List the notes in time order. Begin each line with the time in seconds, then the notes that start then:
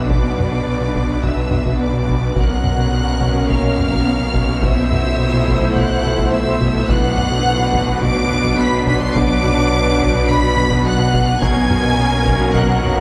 Already playing: B1 B2 B3 D4 F#4 B4
0.09 B2 D5 D6, taiko
0.24 B3
0.38 B2, taiko low-mid
0.52 B2
0.67 B2
0.81 B2
0.95 B2, taiko
1.09 B2
1.23 B2 E5 E6, taiko
1.37 B2
1.51 B2, taiko low-mid
1.65 B2, taiko
1.79 B3 D5 D6
1.93 B2
2.07 B2, taiko
2.21 B2
2.35 B1 B2 A#3 C#4 F#4 A#4 C#5 F#5 F#6, taiko
2.50 B3
2.64 B2, taiko low-mid
2.78 B2
2.92 B2
3.07 B2
3.21 B2, taiko
3.34 B2
3.48 B2 F5 F6, taiko
3.63 B2
3.78 B2, taiko low-mid
3.91 B2, taiko
4.06 B3
4.20 B2
4.34 B2, taiko
4.49 B2
4.62 B2 A3 E4 A4 C5 E5 E6, taiko
4.77 B3
4.91 B2, taiko low-mid
5.05 B2
5.19 B2
5.34 B2
5.48 B2, taiko
5.62 B2
5.74 B2 F#5 F#6, taiko
5.89 B2
6.04 B2, taiko low-mid
6.18 B2, taiko
6.32 B3 E5 E6
6.47 B2
6.61 B2, taiko
6.75 B2
6.88 B1 B2 F#3 D4 F#4 B4 F#5 F#6, taiko
7.04 B3
7.17 B2, taiko low-mid
7.31 B2
7.45 B2
7.59 B2
7.73 B2, taiko
7.87 B2
8.02 B2 D6 D7, taiko
8.16 B2
8.30 B2, taiko low-mid
8.44 B2, taiko
8.58 B3 B5 B6
8.72 B2
8.87 B2 B5 B6, taiko
9.01 B2 C6 C7
9.15 B2 D6 D7, taiko
9.29 B3
9.43 B2, taiko low-mid
9.58 B2
9.72 B2
9.86 B2
10.00 B2, taiko
10.15 B2
10.28 B2 B5 B6, taiko
10.43 B2
10.57 B2, taiko low-mid
10.71 B2, taiko
10.85 B3 F#5 F#6
10.99 B2
11.13 B2, taiko
11.28 B2
11.41 B1 B2 F#3 A#3 C#4 F#4 A#4 G#5 G#6, taiko
11.56 B3
11.70 B2, taiko low-mid
11.84 B2
11.99 B2
12.12 B2
12.26 B2, taiko
12.40 B2
12.54 B2 F#5 F#6, taiko
12.68 B2
12.83 B2, taiko low-mid
12.96 B2